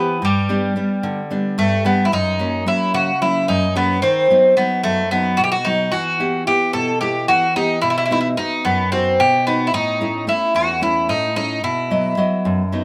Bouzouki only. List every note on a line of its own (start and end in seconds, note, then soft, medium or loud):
0.00 0.24 B3 medium
0.25 1.55 G3 medium
1.59 1.84 A3 medium
1.86 2.04 B3 medium
2.05 2.12 E4 medium
2.13 2.67 D#4 medium
2.68 2.94 E4 medium
2.94 3.21 F#4 medium
3.22 3.47 E4 medium
3.48 3.74 D#4 medium
3.76 4.02 B3 medium
4.02 4.56 C4 medium
4.57 4.82 B3 medium
4.84 5.09 A3 medium
5.11 5.39 B3 medium
5.37 5.43 F#4 medium
5.44 5.51 G4 medium
5.52 5.66 F#4 medium
5.65 5.90 D#4 medium
5.92 6.43 F#4 medium
6.47 6.73 G4 medium
6.73 7.00 A4 loud
7.01 7.26 G4 medium
7.28 7.54 F#4 medium
7.56 7.81 D#4 medium
7.82 7.89 E4 medium
7.90 7.96 E4 medium
7.98 8.04 E4 medium
8.06 8.11 E4 medium
8.12 8.19 E4 medium
8.21 8.27 E4 medium
8.37 8.63 D#4 medium
8.65 8.90 B3 medium
8.92 9.20 C4 medium
9.20 9.45 G4 medium
9.47 9.67 B3 medium
9.67 9.74 E4 medium
9.74 10.24 D#4 medium
10.29 10.54 E4 medium
10.56 10.82 F#4 medium
10.83 11.08 E4 medium
11.09 11.35 D#4 medium
11.36 11.62 D#4 medium
11.64 12.84 E4 medium